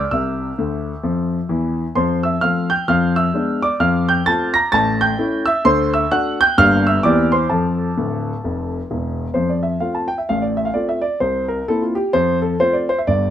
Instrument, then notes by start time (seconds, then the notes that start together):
grand piano
Already playing: D5
0.11 C2 C3 E5 E6
0.58 D2 D3
1.03 F2 F3
1.49 E2 E3
1.95 F2 F3 C5 C6
2.23 E5 E6
2.41 F3 A3 C4 F5 F6
2.70 G5 G6
2.88 F2 F3 F5 F6
3.16 E5 E6
3.34 G#3 B3 D4
3.62 D5 D6
3.80 F2 F3 F5 F6
4.09 G5 G6
4.26 A3 C4 F4 A5 A6
4.54 A#5 A#6
4.72 A1 A2 A5 A6
5.01 G5 G6
5.19 A3 C#4 E4
5.46 E5 E6
5.65 D2 D3 C5 C6
5.94 E5 E6
6.11 A3 D4 F#4 F#5 F#6
6.41 G5 G6
6.58 G1 G2 A#3 D4 G4 F5 F6
6.87 E5 E6
7.03 E2 E3 A#3 C4 G4 D5 D6
7.32 C5 C6
7.49 F2 F3 A4 A5
7.97 D1 D2
8.44 F1 F2
8.91 E1 E2
9.34 F2 F3 C5
9.49 D5
9.63 E5
9.80 A3 C4 F4 F5
9.95 A5
10.08 G5
10.18 E5
10.29 A1 A2 F5
10.42 D5
10.57 E5
10.65 F5
10.74 A3 C4 F4 D5
10.89 E5
11.01 D5
11.20 C2 C3 C5
11.48 A#4
11.68 A#3 C4 E4 A4
11.82 F4
11.95 G4
12.13 F2 F3 C5
12.42 A4
12.60 A3 C4 F4 C5
12.73 D5
12.89 C5
12.99 E5
13.07 G1 G2 D5